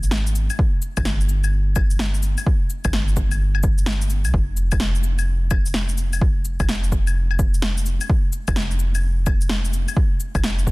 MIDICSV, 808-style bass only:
0, 0, Header, 1, 2, 480
1, 0, Start_track
1, 0, Key_signature, -4, "minor"
1, 0, Tempo, 468750
1, 603, Time_signature, 4, 2, 24, 8
1, 10973, End_track
2, 0, Start_track
2, 0, Title_t, "808-style bass"
2, 0, Program_c, 0, 38
2, 0, Note_on_c, 0, 32, 89
2, 499, Note_off_c, 0, 32, 0
2, 996, Note_on_c, 0, 31, 95
2, 2417, Note_off_c, 0, 31, 0
2, 2917, Note_on_c, 0, 31, 91
2, 4355, Note_on_c, 0, 36, 83
2, 4370, Note_off_c, 0, 31, 0
2, 4435, Note_off_c, 0, 36, 0
2, 4442, Note_on_c, 0, 29, 96
2, 6737, Note_off_c, 0, 29, 0
2, 6759, Note_on_c, 0, 29, 96
2, 8179, Note_off_c, 0, 29, 0
2, 8682, Note_on_c, 0, 29, 94
2, 10100, Note_off_c, 0, 29, 0
2, 10599, Note_on_c, 0, 29, 90
2, 10973, Note_off_c, 0, 29, 0
2, 10973, End_track
0, 0, End_of_file